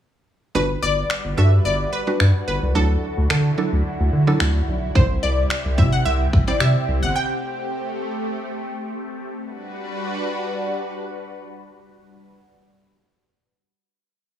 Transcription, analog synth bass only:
0.55 G1
0.83 G1
1.25 G1
1.38 G2
1.65 G1
2.20 G2
2.48 G1
2.62 C2
2.75 D2
3.17 D2
3.30 D3
3.72 D2
4.00 D2
4.13 D3
4.40 D2
4.68 B1
4.95 C2
5.23 C2
5.65 C2
5.78 C3
6.05 C2
6.61 C3
6.88 C2
7.03 G1

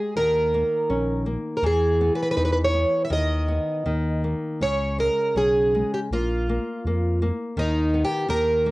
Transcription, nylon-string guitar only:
Already playing: G#3
0.17 D#3
0.54 A#3
0.90 C#4
1.26 A#3
1.63 E3
2.01 B3
2.36 D#4
2.73 B3
3.10 D#3
3.48 B3
3.86 D#3
4.24 A#3
4.61 C#3
4.99 G#3
5.36 C#4
5.75 G#3
6.13 A#3
6.49 A#3
6.87 A#3
7.22 A#3
7.57 D#3
7.94 B3
8.28 D#3
8.66 A#3

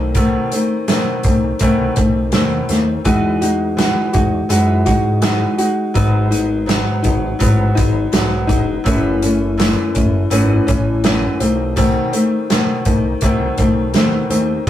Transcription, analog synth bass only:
Already playing: B1
1.24 B1
1.61 C2
1.97 B1
2.33 D#2
2.70 D#2
3.06 E2
4.14 E2
4.50 F#2
4.87 G#2
5.95 G#1
7.05 G#1
7.41 A1
7.78 G#1
8.13 B1
8.49 E1
8.86 F#1
9.96 F#1
10.31 G#1
10.69 A1
11.40 B1
12.86 B1
13.22 C2
13.58 B1
13.94 D#2
14.30 D#2

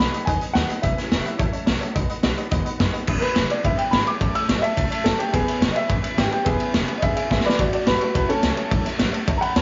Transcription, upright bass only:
0.00 B1
0.27 D#2
0.55 D#2
0.83 E1
0.98 muted upright bass stroke
1.12 E1
1.25 muted upright bass stroke
1.39 A1
1.53 muted upright bass stroke
1.68 A#1
1.81 muted upright bass stroke
1.95 B1
2.24 B1
2.52 D#2
2.67 muted upright bass stroke
2.80 F#2
3.08 E1
3.36 E1
3.65 G#1
3.92 G#1
4.21 A1
4.48 A1
4.63 muted upright bass stroke
4.77 C#2
4.91 muted upright bass stroke
5.05 F#1
5.34 E1
5.46 muted upright bass stroke
5.61 E1
5.90 G#1
6.17 G#1
6.32 muted upright bass stroke
6.46 E1
6.74 E1
6.88 muted upright bass stroke
7.03 G#1
7.17 muted upright bass stroke
7.31 G#1
7.59 A1
7.73 muted upright bass stroke
7.87 A1
8.00 muted upright bass stroke
8.15 C#2
8.43 C#2
8.71 A1
8.86 muted upright bass stroke
9.00 A1
9.14 muted upright bass stroke
9.28 C#2
9.56 D#2

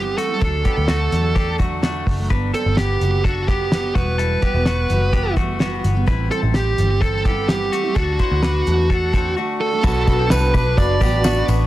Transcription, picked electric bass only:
Already playing: G1
0.42 D2
0.77 D2
1.12 E2
2.07 F#1
2.31 G1
2.66 G1
3.01 F#1
3.95 E1
4.54 E1
4.90 F#1
5.84 G1
6.08 A1
6.43 A1
6.78 G1
7.96 D2
8.31 D2
8.67 E2
9.84 B1
10.08 B1
10.31 C2
10.54 B1
10.78 F#1
11.01 A1
11.48 A1

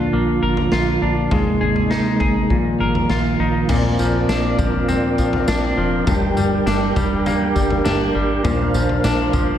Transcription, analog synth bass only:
0.13 A#1
0.43 G#1
0.72 A#1
1.02 A#1
1.32 G#1
1.62 G#1
2.21 G#1
2.50 A#1
2.80 G#1
3.10 A#1
3.39 A#1
3.69 A#1
3.99 A#1
4.29 A#1
4.58 G#1
5.18 A#1
5.48 A#1
5.77 F1
6.07 G1
6.37 G1
6.66 G1
6.96 F1
7.56 G1
7.86 G1
8.15 G#1
8.45 A#1
8.74 A#1
9.04 A#1
9.34 G#1

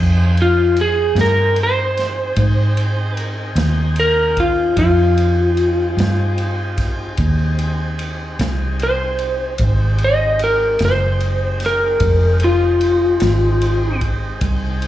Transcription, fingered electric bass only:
Already playing: F2
1.15 G2
2.37 G#2
3.56 D#2
4.77 F2
5.97 G2
7.18 D#2
8.39 C2
9.59 G#1
10.80 F#1
12.01 F1
13.22 G#1
14.41 C2

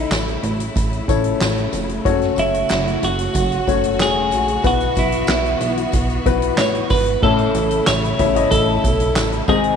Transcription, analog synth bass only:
0.11 A1
0.43 A1
0.76 A1
1.08 A1
1.41 A1
1.73 F1
2.05 F#1
2.37 F#1
2.70 F#1
3.02 F#1
3.35 F#1
3.67 F#1
4.00 E1
4.32 A#1
4.64 B1
4.97 B1
5.29 B1
5.60 B1
5.93 B1
6.26 B1
6.57 A1
6.90 G#1
7.22 A1
7.54 A1
7.88 A1
8.20 A1
8.51 A1
8.84 B1
9.15 A1
9.48 G#1

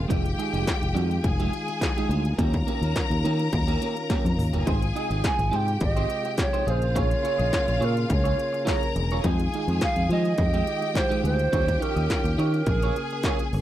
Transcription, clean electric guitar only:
0.08 G#3 D#4 G4
0.24 muted clean electric guitar stroke
0.38 G#3 D#4 G#4
0.53 G#3 D#4 G#4
0.67 muted clean electric guitar stroke
0.82 muted clean electric guitar stroke
0.94 G#3 D#4 G4
1.10 muted clean electric guitar stroke
1.24 muted clean electric guitar stroke
1.40 G#3 D#4 G4
1.54 muted clean electric guitar stroke
1.68 muted clean electric guitar stroke
1.82 muted clean electric guitar stroke
1.97 G#3 D#4 G4
2.10 G#3 D#4 G#4
2.25 muted clean electric guitar stroke
2.39 A#3 C#4 G4
2.54 muted clean electric guitar stroke
2.67 A#3 C#4 G4
2.82 A#3 C#4 A#4
2.97 muted clean electric guitar stroke
3.11 muted clean electric guitar stroke
3.25 A#3 C#4 G4
3.40 muted clean electric guitar stroke
3.53 muted clean electric guitar stroke
3.68 A#3 C#4 G4
3.82 A#3 C#4 G4
3.96 muted clean electric guitar stroke
4.10 A#3 C#4 G4
4.26 muted clean electric guitar stroke
4.39 muted clean electric guitar stroke
4.53 A#3 C#4 G4
4.66 D#4 G4 C5
4.82 muted clean electric guitar stroke
4.96 D#4 G4 D#5
5.10 D#4 G4 D#5
5.24 muted clean electric guitar stroke
5.40 muted clean electric guitar stroke
5.51 D#4 G4 C5
5.67 muted clean electric guitar stroke
5.81 muted clean electric guitar stroke
5.97 D#4 G4 C5
6.09 muted clean electric guitar stroke
6.25 muted clean electric guitar stroke
6.39 muted clean electric guitar stroke
6.53 D#4 G4 C5
6.66 F4 G#4 D#5
6.82 muted clean electric guitar stroke
6.95 F4 G#4 C#5
7.10 muted clean electric guitar stroke
7.24 F4 G#4 C#5
7.38 F4 G#4 D#5
7.52 muted clean electric guitar stroke
7.67 muted clean electric guitar stroke
7.80 F4 G#4 C#5
7.96 muted clean electric guitar stroke
8.08 muted clean electric guitar stroke
8.24 F4 G#4 C#5
8.37 muted clean electric guitar stroke
8.53 muted clean electric guitar stroke
8.65 F4 G#4 C#5
8.82 muted clean electric guitar stroke
8.95 muted clean electric guitar stroke
9.12 F4 G#4 C#5
9.26 G#3 D#4 G4
9.41 muted clean electric guitar stroke
9.54 G#3 D#4 G#4
9.70 G#3 D#4 G#4
9.82 muted clean electric guitar stroke
9.99 muted clean electric guitar stroke
10.12 G#3 D#4 G4
10.26 muted clean electric guitar stroke
10.38 muted clean electric guitar stroke
10.54 G#3 D#4 G4
10.66 muted clean electric guitar stroke
10.81 muted clean electric guitar stroke
10.94 muted clean electric guitar stroke
11.09 G#3 D#4 G4
11.22 G#3 D#4 G#4
11.38 muted clean electric guitar stroke
11.52 D#4 G4 C#5
11.67 muted clean electric guitar stroke
11.80 D#4 G4 C#5
11.95 D#4 G4 D#5
12.10 muted clean electric guitar stroke
12.25 muted clean electric guitar stroke
12.38 D#4 G4 C#5
12.54 muted clean electric guitar stroke
12.68 muted clean electric guitar stroke
12.83 F4 G#4 C#5
12.97 muted clean electric guitar stroke
13.13 muted clean electric guitar stroke
13.26 F4 G#4 C#5
13.40 muted clean electric guitar stroke
13.54 muted clean electric guitar stroke

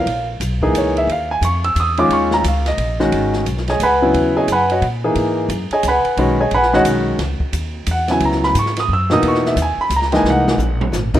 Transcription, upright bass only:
0.06 A#1
0.40 B1
0.73 C#2
1.07 D#2
1.41 F2
1.75 E2
2.09 D#2
2.44 C#2
2.78 A#1
3.12 G#1
3.46 B1
3.80 C#2
4.14 D#2
4.48 F#2
4.82 A#2
5.16 G#2
5.49 F#2
5.71 muted upright bass stroke
5.83 C#2
6.05 muted upright bass stroke
6.17 B1
6.52 A#1
6.85 B1
7.19 C#2
7.40 muted upright bass stroke
7.53 D#2
7.87 E2
8.21 C#2
8.55 G#2
8.89 F#2
9.23 E2
9.56 D#2
9.78 muted upright bass stroke
9.90 C#2
10.24 C2
10.58 A#1
10.92 G#1

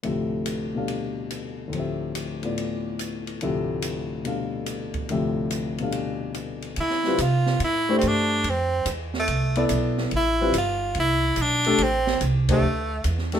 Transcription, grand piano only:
0.03 D2 A2 C3 F3 G4 E5
0.75 B2 G3 D4 A4 F5
1.68 D2 A2
1.72 F3 C4
1.77 G4 E5
2.43 A2 B3 E4 F4 D5
3.42 D2 A2 C3 F3 G4 E5
4.24 B2 G3 D4 A4 F5
5.10 D2 A2 C3 F3 G4 E5
5.80 B2 G3 D4 A4 F5
7.07 G3 C4 F4 B4
7.89 A3 D4 G4 C5
9.57 B3 E4 A4 D5
10.41 G3 C4 F4 B4
11.66 A3 D4 G4 A4
12.50 A3 D4 G4 C5
13.34 A3 D4 G4 A4

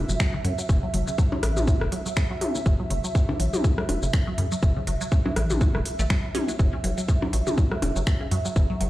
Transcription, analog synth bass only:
0.09 F#1
0.45 F#2
0.69 F#1
0.94 F#1
1.43 A1
1.81 E1
2.66 F#1
2.90 F#1
3.40 A1
3.89 E1
4.03 F#1
4.38 F#2
4.63 F#1
4.87 F#1
5.36 A1
5.75 E1
5.99 A1
6.59 F#1
6.84 F#1
7.33 A1
7.82 E1
7.96 F#1
8.31 F#2
8.56 F#1
8.81 F#1

